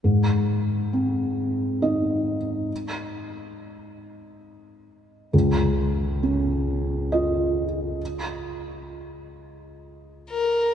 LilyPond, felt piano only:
\new Staff \with { instrumentName = "Felt piano" } { \time 3/4 \key aes \major \tempo 4 = 67 aes,4 c'4 <ees' ees''>4~ | <ees' ees''>2. | des,4 des'4 <f' ees''>4~ | <f' ees''>2. | }